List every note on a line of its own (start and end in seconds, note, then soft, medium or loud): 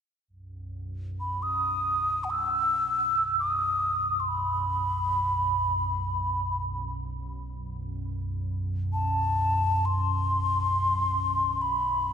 0.28 12.13 B1 medium
0.28 12.13 F#2 medium
1.20 1.44 B5 medium
1.43 2.26 D#6 medium
2.24 2.32 F#5 medium
2.30 3.39 E6 medium
3.40 4.21 D#6 medium
4.20 4.30 C6 soft
4.28 6.65 B5 medium
8.93 9.87 A5 medium
9.85 11.63 C6 loud
11.62 12.13 B5 medium